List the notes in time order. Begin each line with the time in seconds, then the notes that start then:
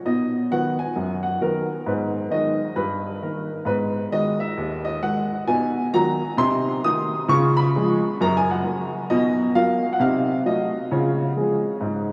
0.05 B2 D#4 D#5
0.51 D#3 F#3 B3 F#5
0.79 G#5
0.96 F#2
1.23 F#5
1.41 D#3 F#3 B3 A#4
1.86 G#2 B3 B4
2.30 D#3 G#3 D#4 D#5
2.76 G2 B4
3.22 D#3 A#3 D#4 A#4
3.65 G#2 B3 B4
4.12 D#3 G#3 F#4 D#5
4.40 E5
4.57 D#2
4.85 D#5
5.02 D#3 G#3 F#4 F#5
5.47 B2 D#4 G#5
5.93 D#3 F#3 F#4 A#5
6.37 C3 D#4 C6
6.84 D#3 A3 F#4 D#6
7.28 C#3 F4 C#6
7.57 B5
7.76 F3 G#3 G#4
8.21 F#2 A#3 A#5
8.37 G#5
8.51 F#5
8.64 F#3 A#3 F#4
9.10 B2 D#4 D#5
9.55 F#3 A#3 F#4 F5
9.93 F#5
9.99 C3 D#4 F5
10.45 F#3 A3 F#4 D#5
10.91 C#3 F4 C#5
11.36 F3 G#3 G#4
11.81 G#2